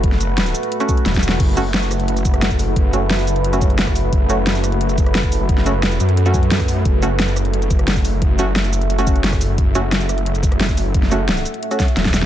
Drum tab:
CC |------------------------------------------------|x-----------------------------------------------|------------------------------------------------|------------------------------------------------|
HH |x-----x-----x--x--x--x--x--x--x--x--x-----x-----|x-----x-----x--x--x--x--x--x--x--x--x-----o-----|x-----x-----x--x--x--x--x--x--x--x--x-----o-----|x-----x-----x--x--x--x--x--x--x--x--x-----o-----|
SH |------x--------x--x--------x--x--------x--x-----|------x--------x--x--------x--x--------x--x-----|------x--------x--x--------x--x--------x--x-----|------x--------x--x--------x--x--------x--x-----|
SD |---o--------o-----------------------o---o---o---|------------o-----r--------------r--o-----------|------------o-----------------------o--r--------|------------o-----r--------------r--o-----------|
BD |o-----------------------------o--------o--------|o-----------------------------o--------o--------|o-----------------------------o--------o--------|o-----------------------------o--------o--------|

CC |------------------------------------------------|------------------------------------------------|------------------------------------------------|------------------------------------------------|
HH |x-----x-----x--x--x--x--x--x--x--x--x-----o-----|x-----x-----x--x--x--x--x--x--x--x--x-----o-----|x-----x-----x--x--x--x--x--x--x--x--x-----o-----|x-----x-----x--x--x--x--x--x--x--x--x-----o-----|
SH |------x--------x--x--------x--x--------x--x-----|------x--------x--x--------x--x--------x--x-----|------x--------x--x--------x--x--------x--x-----|------x--------x--x--------x--x--------x--x-----|
SD |---o--------o-----------------------o--r--------|------------o-----r--------------r--o-----------|------------o-----------------------o--r--------|------------o-----r--------------r--o-----------|
BD |o-----------------------------o--------o--------|o-----------------------------o--------o--------|o-----------------------------o--------o--------|o-----------------------------o--------o--------|

CC |------------------------------------------------|
HH |x-----x-----x--x--x--x--x--x--x--x--x-----o-----|
SH |------x--------x--x--------x--x--------x--x-----|
SD |---o--------o-----------------o-----o--o--o--o--|
BD |o-----------------------------o--------o--------|